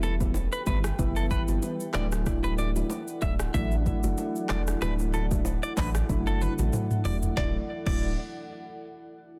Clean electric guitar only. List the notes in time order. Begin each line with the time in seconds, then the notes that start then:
0.03 A4
0.53 B4
0.67 B4
1.16 A4
1.31 B4
1.95 D5
2.44 B4
2.58 D5
3.22 E5
3.54 E5
4.50 D5
4.82 B4
5.14 A4
5.63 D5
5.78 B4
6.27 A4
6.42 B4
7.05 D5
7.37 D5
7.87 D5